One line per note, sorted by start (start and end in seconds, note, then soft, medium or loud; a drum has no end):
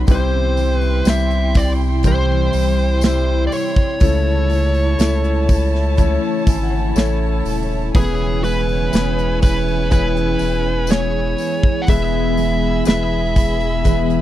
0.00 0.18 D#4 medium
0.00 0.18 F#4 medium
0.00 0.18 C#5 medium
0.07 1.02 C2 medium
0.07 1.51 C3 medium
0.07 4.01 C3 medium
0.07 3.98 C3 medium
0.07 1.01 G3 medium
0.07 3.98 G3 medium
0.07 1.01 C4 medium
0.07 1.01 E4 medium
0.07 3.97 E4 medium
0.07 7.91 E4 medium
0.07 1.01 G4 medium
0.07 0.14 B4 medium
0.07 3.97 G5 medium
0.07 3.97 C6 medium
0.07 kick loud
0.07 hi-hat pedal medium
0.07 open hi-hat loud
0.07 tambourine soft
0.11 0.78 C5 medium
0.11 1.05 C5 medium
0.57 3.02 G3 medium
0.57 3.04 C4 medium
0.57 3.04 E4 medium
0.57 hi-hat pedal medium
0.57 open hi-hat medium
0.57 tambourine soft
0.78 1.11 B4 medium
0.78 open hi-hat medium
1.05 2.50 C2 loud
1.05 1.99 G3 medium
1.05 1.99 C4 medium
1.05 1.99 E4 medium
1.05 1.99 G4 medium
1.05 2.00 C5 medium
1.05 snare loud
1.05 hi-hat pedal medium
1.05 open hi-hat medium
1.05 tambourine medium
1.10 1.58 E5 loud
1.30 hi-hat pedal medium
1.54 1.70 D5 medium
1.54 kick loud
1.54 hi-hat pedal medium
1.54 open hi-hat medium
1.54 tambourine soft
2.03 5.56 E3 medium
2.03 2.97 G3 medium
2.03 2.98 C4 medium
2.03 2.98 E4 medium
2.03 2.98 G4 medium
2.03 2.98 C5 medium
2.03 kick medium
2.03 hi-hat pedal medium
2.03 open hi-hat medium
2.03 tambourine soft
2.07 3.00 C5 medium
2.52 3.48 C2 medium
2.52 hi-hat pedal medium
2.52 open hi-hat medium
2.52 tambourine medium
3.01 3.96 C3 medium
3.01 3.96 G3 medium
3.01 4.11 G3 medium
3.01 3.96 E4 medium
3.01 4.51 E4 medium
3.01 3.97 G4 medium
3.01 3.43 C5 medium
3.01 3.97 E5 medium
3.01 snare loud
3.01 hi-hat pedal medium
3.01 open hi-hat medium
3.01 tambourine medium
3.47 3.53 D5 medium
3.52 6.44 C#5 medium
3.52 hi-hat pedal medium
3.52 open hi-hat medium
3.52 tambourine soft
3.76 kick medium
4.00 4.96 C#2 loud
4.00 5.45 C#3 medium
4.00 7.95 C#3 medium
4.00 7.91 C#3 medium
4.00 4.94 A3 medium
4.00 7.91 A3 medium
4.00 4.94 C#4 medium
4.00 4.94 E4 medium
4.00 7.91 E4 medium
4.00 4.95 A4 medium
4.00 7.91 C#5 medium
4.00 4.95 C#5 medium
4.00 7.90 A5 medium
4.00 kick loud
4.00 hi-hat pedal medium
4.00 open hi-hat medium
4.00 tambourine soft
4.50 6.95 A3 medium
4.50 6.97 C#4 medium
4.50 6.97 E4 medium
4.50 hi-hat pedal medium
4.50 open hi-hat medium
4.74 open hi-hat medium
4.98 6.18 C#2 medium
4.98 5.92 A3 medium
4.98 5.93 C#4 medium
4.98 5.93 E4 medium
4.98 5.93 A4 medium
4.98 5.93 E5 medium
4.98 snare loud
4.98 hi-hat pedal medium
4.98 open hi-hat medium
4.98 tambourine medium
5.24 hi-hat pedal medium
5.48 kick medium
5.48 hi-hat pedal medium
5.48 open hi-hat medium
5.48 tambourine soft
5.75 snare soft
5.97 9.48 E3 medium
5.97 6.91 A3 medium
5.97 6.91 C#4 medium
5.97 6.91 E4 medium
5.97 6.91 A4 medium
5.97 6.92 C#5 loud
5.97 kick medium
5.97 hi-hat pedal medium
5.97 open hi-hat medium
5.97 tambourine medium
6.47 6.93 G#1 medium
6.47 6.62 G#5 medium
6.47 kick loud
6.47 hi-hat pedal medium
6.47 open hi-hat medium
6.47 tambourine medium
6.63 6.94 F#5 medium
6.96 7.42 A1 loud
6.96 7.89 A3 medium
6.96 8.05 A3 medium
6.96 7.89 C#4 medium
6.96 8.44 C#4 medium
6.96 7.90 E4 medium
6.96 8.45 E4 medium
6.96 7.90 A4 medium
6.96 7.61 C#5 medium
6.96 7.58 E5 medium
6.96 snare loud
6.96 hi-hat pedal medium
6.96 open hi-hat medium
6.96 tambourine medium
7.45 7.91 D#1 medium
7.45 hi-hat pedal medium
7.45 open hi-hat medium
7.45 tambourine soft
7.62 7.93 C#5 medium
7.94 8.89 E1 loud
7.94 11.87 E2 medium
7.94 11.84 E3 medium
7.94 9.38 E3 medium
7.94 8.88 B3 loud
7.94 8.88 C#4 medium
7.94 9.89 C#4 medium
7.94 11.84 E4 medium
7.94 8.88 E4 medium
7.94 14.21 G#4 medium
7.94 8.88 G#4 medium
7.94 8.41 G#4 medium
7.94 8.89 B4 loud
7.94 11.84 C#5 medium
7.94 11.84 G#5 medium
7.94 kick loud
7.94 hi-hat pedal medium
7.94 open hi-hat loud
8.43 10.89 G#3 medium
8.43 10.89 C#4 medium
8.43 10.90 E4 medium
8.43 9.38 B4 medium
8.43 hi-hat pedal medium
8.43 open hi-hat medium
8.43 tambourine soft
8.69 open hi-hat medium
8.92 10.37 E1 loud
8.92 9.86 B3 medium
8.92 9.86 C#4 medium
8.92 9.86 E4 medium
8.92 9.87 G#4 medium
8.92 9.87 B4 medium
8.92 snare loud
8.92 hi-hat pedal medium
8.92 open hi-hat medium
8.92 tambourine medium
9.18 hi-hat pedal medium
9.42 9.91 B4 medium
9.42 kick loud
9.42 hi-hat pedal medium
9.42 open hi-hat medium
9.42 tambourine medium
9.68 open hi-hat soft
9.90 13.41 E3 medium
9.90 10.84 B3 medium
9.90 14.21 B3 medium
9.90 10.84 C#4 medium
9.90 10.84 E4 medium
9.90 10.84 G#4 medium
9.90 10.93 B4 medium
9.90 10.85 C#5 medium
9.90 kick medium
9.90 hi-hat pedal medium
9.90 open hi-hat medium
9.90 tambourine soft
10.17 hi-hat pedal medium
10.39 11.35 E1 loud
10.39 hi-hat pedal medium
10.39 open hi-hat medium
10.39 tambourine medium
10.87 12.38 G#3 medium
10.87 11.83 B3 medium
10.87 11.83 C#4 medium
10.87 11.98 C#4 medium
10.87 11.83 E4 medium
10.87 12.39 E4 medium
10.87 11.83 G#4 medium
10.87 11.83 C#5 medium
10.87 11.84 C#5 loud
10.87 hi-hat pedal medium
10.87 open hi-hat medium
10.87 tambourine medium
10.92 snare loud
11.38 hi-hat pedal medium
11.38 open hi-hat medium
11.38 tambourine soft
11.63 kick loud
11.82 11.88 F#5 medium
11.86 12.82 E1 loud
11.86 14.21 E2 medium
11.86 14.21 E3 medium
11.86 13.32 E3 medium
11.86 12.82 G#3 medium
11.86 12.82 B3 medium
11.86 12.82 E4 medium
11.86 14.21 G#4 medium
11.86 12.82 G#4 medium
11.86 12.82 B4 loud
11.86 14.21 E5 medium
11.86 12.83 E5 loud
11.86 14.21 B5 medium
11.86 kick loud
11.86 hi-hat pedal medium
11.86 open hi-hat medium
11.86 tambourine soft
12.37 14.21 G#3 medium
12.37 14.21 B3 medium
12.37 14.21 E4 medium
12.37 hi-hat pedal medium
12.37 open hi-hat medium
12.37 tambourine soft
12.85 14.21 E1 loud
12.85 13.80 G#3 medium
12.85 13.80 B3 medium
12.85 13.80 E4 medium
12.85 13.80 G#4 medium
12.85 13.80 B4 medium
12.85 14.21 E5 medium
12.85 snare loud
12.85 hi-hat pedal medium
12.85 open hi-hat medium
12.85 tambourine medium
13.36 kick medium
13.36 hi-hat pedal medium
13.36 open hi-hat medium
13.36 tambourine medium
13.60 open hi-hat soft
13.85 14.21 E3 medium
13.85 14.21 G#3 medium
13.85 14.21 B3 medium
13.85 14.21 E4 medium
13.85 14.21 G#4 medium
13.85 14.21 B4 medium
13.85 kick medium
13.85 hi-hat pedal medium
13.85 open hi-hat medium
13.85 tambourine medium
14.10 hi-hat pedal medium